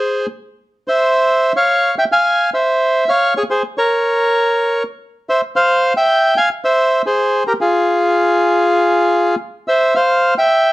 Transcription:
0, 0, Header, 1, 2, 480
1, 0, Start_track
1, 0, Key_signature, -4, "minor"
1, 0, Tempo, 553506
1, 988, Time_signature, 4, 2, 24, 8
1, 3860, Tempo, 545455
1, 7220, Tempo, 558140
1, 9333, End_track
2, 0, Start_track
2, 0, Title_t, "Bandoneon"
2, 0, Program_c, 0, 23
2, 0, Note_on_c, 0, 68, 57
2, 0, Note_on_c, 0, 72, 69
2, 225, Note_off_c, 0, 72, 0
2, 233, Note_off_c, 0, 68, 0
2, 761, Note_on_c, 0, 72, 63
2, 773, Note_on_c, 0, 76, 79
2, 1320, Note_off_c, 0, 72, 0
2, 1326, Note_off_c, 0, 76, 0
2, 1356, Note_on_c, 0, 73, 64
2, 1359, Note_on_c, 0, 77, 81
2, 1688, Note_off_c, 0, 73, 0
2, 1689, Note_off_c, 0, 77, 0
2, 1722, Note_on_c, 0, 76, 64
2, 1723, Note_on_c, 0, 79, 86
2, 1773, Note_off_c, 0, 76, 0
2, 1774, Note_off_c, 0, 79, 0
2, 1839, Note_on_c, 0, 77, 71
2, 1841, Note_on_c, 0, 80, 91
2, 2168, Note_off_c, 0, 77, 0
2, 2169, Note_off_c, 0, 80, 0
2, 2204, Note_on_c, 0, 72, 65
2, 2204, Note_on_c, 0, 76, 78
2, 2640, Note_off_c, 0, 72, 0
2, 2676, Note_on_c, 0, 77, 86
2, 2684, Note_on_c, 0, 73, 67
2, 2687, Note_off_c, 0, 76, 0
2, 2893, Note_off_c, 0, 77, 0
2, 2897, Note_off_c, 0, 73, 0
2, 2920, Note_on_c, 0, 73, 87
2, 2929, Note_on_c, 0, 68, 64
2, 2970, Note_off_c, 0, 73, 0
2, 2977, Note_off_c, 0, 68, 0
2, 3038, Note_on_c, 0, 72, 73
2, 3043, Note_on_c, 0, 68, 54
2, 3142, Note_off_c, 0, 72, 0
2, 3146, Note_off_c, 0, 68, 0
2, 3275, Note_on_c, 0, 73, 72
2, 3280, Note_on_c, 0, 70, 59
2, 4193, Note_off_c, 0, 73, 0
2, 4196, Note_off_c, 0, 70, 0
2, 4601, Note_on_c, 0, 76, 81
2, 4603, Note_on_c, 0, 72, 66
2, 4705, Note_off_c, 0, 76, 0
2, 4706, Note_off_c, 0, 72, 0
2, 4835, Note_on_c, 0, 72, 69
2, 4836, Note_on_c, 0, 77, 95
2, 5165, Note_off_c, 0, 72, 0
2, 5165, Note_off_c, 0, 77, 0
2, 5196, Note_on_c, 0, 79, 94
2, 5197, Note_on_c, 0, 76, 68
2, 5526, Note_off_c, 0, 76, 0
2, 5550, Note_on_c, 0, 80, 96
2, 5552, Note_on_c, 0, 77, 70
2, 5560, Note_off_c, 0, 79, 0
2, 5656, Note_off_c, 0, 80, 0
2, 5658, Note_off_c, 0, 77, 0
2, 5791, Note_on_c, 0, 72, 72
2, 5792, Note_on_c, 0, 76, 88
2, 6121, Note_off_c, 0, 72, 0
2, 6121, Note_off_c, 0, 76, 0
2, 6158, Note_on_c, 0, 68, 66
2, 6160, Note_on_c, 0, 72, 83
2, 6485, Note_off_c, 0, 68, 0
2, 6486, Note_off_c, 0, 72, 0
2, 6520, Note_on_c, 0, 70, 84
2, 6521, Note_on_c, 0, 67, 64
2, 6570, Note_off_c, 0, 67, 0
2, 6570, Note_off_c, 0, 70, 0
2, 6639, Note_on_c, 0, 65, 58
2, 6639, Note_on_c, 0, 68, 73
2, 8153, Note_off_c, 0, 65, 0
2, 8153, Note_off_c, 0, 68, 0
2, 8431, Note_on_c, 0, 76, 88
2, 8438, Note_on_c, 0, 72, 62
2, 8654, Note_off_c, 0, 72, 0
2, 8668, Note_on_c, 0, 77, 86
2, 8674, Note_off_c, 0, 76, 0
2, 8675, Note_on_c, 0, 72, 69
2, 9000, Note_off_c, 0, 77, 0
2, 9004, Note_off_c, 0, 72, 0
2, 9036, Note_on_c, 0, 79, 96
2, 9041, Note_on_c, 0, 76, 75
2, 9333, Note_off_c, 0, 76, 0
2, 9333, Note_off_c, 0, 79, 0
2, 9333, End_track
0, 0, End_of_file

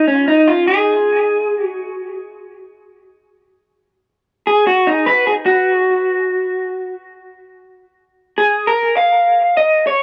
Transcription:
0, 0, Header, 1, 2, 480
1, 0, Start_track
1, 0, Tempo, 599401
1, 221, Time_signature, 4, 2, 24, 8
1, 8030, End_track
2, 0, Start_track
2, 0, Title_t, "Clean electric guitar"
2, 0, Program_c, 0, 27
2, 60, Note_on_c, 0, 61, 79
2, 219, Note_off_c, 0, 61, 0
2, 222, Note_on_c, 0, 63, 89
2, 381, Note_on_c, 0, 65, 83
2, 386, Note_off_c, 0, 63, 0
2, 537, Note_off_c, 0, 65, 0
2, 541, Note_on_c, 0, 68, 91
2, 1317, Note_off_c, 0, 68, 0
2, 1317, Note_on_c, 0, 66, 91
2, 1708, Note_off_c, 0, 66, 0
2, 3579, Note_on_c, 0, 68, 85
2, 3735, Note_off_c, 0, 68, 0
2, 3738, Note_on_c, 0, 66, 79
2, 3899, Note_on_c, 0, 63, 82
2, 3903, Note_off_c, 0, 66, 0
2, 4055, Note_on_c, 0, 71, 113
2, 4063, Note_off_c, 0, 63, 0
2, 4217, Note_off_c, 0, 71, 0
2, 4220, Note_on_c, 0, 68, 93
2, 4263, Note_off_c, 0, 68, 0
2, 4370, Note_on_c, 0, 66, 82
2, 5542, Note_off_c, 0, 66, 0
2, 6709, Note_on_c, 0, 68, 91
2, 6945, Note_on_c, 0, 70, 108
2, 6950, Note_off_c, 0, 68, 0
2, 7165, Note_off_c, 0, 70, 0
2, 7181, Note_on_c, 0, 77, 106
2, 7662, Note_off_c, 0, 77, 0
2, 7665, Note_on_c, 0, 75, 96
2, 7899, Note_off_c, 0, 75, 0
2, 7902, Note_on_c, 0, 73, 104
2, 8030, Note_off_c, 0, 73, 0
2, 8030, End_track
0, 0, End_of_file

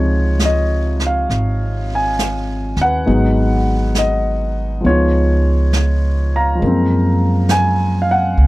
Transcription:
0, 0, Header, 1, 4, 480
1, 0, Start_track
1, 0, Key_signature, -5, "major"
1, 0, Tempo, 888889
1, 1655, Time_signature, 4, 2, 24, 8
1, 4574, End_track
2, 0, Start_track
2, 0, Title_t, "Grand piano"
2, 0, Program_c, 0, 0
2, 0, Control_c, 0, 64, 127
2, 0, Note_on_c, 0, 48, 40
2, 0, Note_on_c, 0, 53, 42
2, 0, Note_on_c, 0, 56, 40
2, 0, Note_on_c, 0, 63, 46
2, 0, Note_on_c, 0, 65, 45
2, 0, Note_on_c, 0, 73, 74
2, 244, Note_on_c, 0, 75, 56
2, 530, Note_off_c, 0, 65, 0
2, 562, Note_off_c, 0, 75, 0
2, 575, Note_on_c, 0, 77, 57
2, 1052, Note_off_c, 0, 77, 0
2, 1054, Note_on_c, 0, 80, 64
2, 1494, Note_off_c, 0, 80, 0
2, 1520, Note_on_c, 0, 78, 74
2, 1535, Note_on_c, 0, 71, 43
2, 1645, Note_off_c, 0, 56, 0
2, 1646, Note_off_c, 0, 53, 0
2, 1650, Note_off_c, 0, 63, 0
2, 1650, Note_on_c, 0, 54, 40
2, 1653, Note_on_c, 0, 56, 41
2, 1654, Note_on_c, 0, 59, 38
2, 1658, Note_on_c, 0, 63, 46
2, 1662, Control_c, 0, 64, 0
2, 1663, Note_off_c, 0, 73, 0
2, 1667, Note_off_c, 0, 48, 0
2, 1742, Control_c, 0, 64, 127
2, 2124, Note_off_c, 0, 78, 0
2, 2151, Note_on_c, 0, 75, 62
2, 2454, Note_off_c, 0, 71, 0
2, 2595, Note_off_c, 0, 56, 0
2, 2595, Note_on_c, 0, 53, 35
2, 2601, Note_off_c, 0, 75, 0
2, 2603, Note_on_c, 0, 56, 31
2, 2605, Note_off_c, 0, 59, 0
2, 2612, Note_off_c, 0, 54, 0
2, 2613, Note_on_c, 0, 59, 33
2, 2614, Note_off_c, 0, 63, 0
2, 2622, Control_c, 0, 64, 0
2, 2622, Note_on_c, 0, 63, 38
2, 2627, Note_on_c, 0, 73, 63
2, 2638, Note_on_c, 0, 65, 43
2, 2731, Control_c, 0, 64, 127
2, 3399, Note_off_c, 0, 73, 0
2, 3434, Note_on_c, 0, 82, 66
2, 3439, Note_on_c, 0, 77, 44
2, 3530, Note_off_c, 0, 53, 0
2, 3538, Note_on_c, 0, 53, 36
2, 3552, Note_off_c, 0, 56, 0
2, 3560, Note_on_c, 0, 56, 34
2, 3561, Note_off_c, 0, 65, 0
2, 3570, Note_off_c, 0, 59, 0
2, 3575, Note_off_c, 0, 63, 0
2, 3577, Control_c, 0, 64, 0
2, 3577, Note_on_c, 0, 58, 32
2, 3600, Note_on_c, 0, 60, 41
2, 3688, Control_c, 0, 64, 127
2, 3880, Note_off_c, 0, 82, 0
2, 4056, Note_on_c, 0, 80, 78
2, 4322, Note_off_c, 0, 77, 0
2, 4330, Note_off_c, 0, 80, 0
2, 4330, Note_on_c, 0, 77, 54
2, 4374, Note_off_c, 0, 77, 0
2, 4381, Note_on_c, 0, 78, 63
2, 4574, Note_off_c, 0, 53, 0
2, 4574, Note_off_c, 0, 56, 0
2, 4574, Note_off_c, 0, 58, 0
2, 4574, Note_off_c, 0, 60, 0
2, 4574, Note_off_c, 0, 78, 0
2, 4574, End_track
3, 0, Start_track
3, 0, Title_t, "Upright bass"
3, 0, Program_c, 1, 32
3, 0, Note_on_c, 1, 37, 52
3, 674, Note_off_c, 1, 37, 0
3, 700, Note_on_c, 1, 32, 53
3, 1479, Note_off_c, 1, 32, 0
3, 1495, Note_on_c, 1, 39, 45
3, 1642, Note_off_c, 1, 39, 0
3, 1660, Note_on_c, 1, 32, 59
3, 2595, Note_off_c, 1, 32, 0
3, 2617, Note_on_c, 1, 37, 55
3, 3550, Note_off_c, 1, 37, 0
3, 3576, Note_on_c, 1, 42, 65
3, 4505, Note_off_c, 1, 42, 0
3, 4523, Note_on_c, 1, 37, 59
3, 4574, Note_off_c, 1, 37, 0
3, 4574, End_track
4, 0, Start_track
4, 0, Title_t, "Drums"
4, 213, Note_on_c, 9, 38, 33
4, 213, Note_on_c, 9, 44, 37
4, 267, Note_off_c, 9, 38, 0
4, 267, Note_off_c, 9, 44, 0
4, 538, Note_on_c, 9, 38, 21
4, 592, Note_off_c, 9, 38, 0
4, 703, Note_on_c, 9, 25, 26
4, 703, Note_on_c, 9, 38, 19
4, 757, Note_off_c, 9, 38, 0
4, 1182, Note_on_c, 9, 38, 29
4, 1182, Note_on_c, 9, 44, 42
4, 1236, Note_off_c, 9, 38, 0
4, 1236, Note_off_c, 9, 44, 0
4, 1493, Note_on_c, 9, 38, 21
4, 1547, Note_off_c, 9, 38, 0
4, 1653, Note_off_c, 9, 25, 0
4, 1653, Note_on_c, 9, 25, 23
4, 2132, Note_on_c, 9, 38, 33
4, 2132, Note_on_c, 9, 44, 36
4, 2186, Note_off_c, 9, 38, 0
4, 2186, Note_off_c, 9, 44, 0
4, 2613, Note_off_c, 9, 25, 0
4, 2613, Note_on_c, 9, 25, 28
4, 3094, Note_on_c, 9, 38, 30
4, 3094, Note_on_c, 9, 44, 40
4, 3148, Note_off_c, 9, 38, 0
4, 3148, Note_off_c, 9, 44, 0
4, 3569, Note_off_c, 9, 25, 0
4, 3569, Note_on_c, 9, 25, 27
4, 4043, Note_on_c, 9, 38, 32
4, 4043, Note_on_c, 9, 44, 43
4, 4097, Note_off_c, 9, 38, 0
4, 4097, Note_off_c, 9, 44, 0
4, 4527, Note_off_c, 9, 25, 0
4, 4527, Note_on_c, 9, 25, 30
4, 4574, Note_off_c, 9, 25, 0
4, 4574, End_track
0, 0, End_of_file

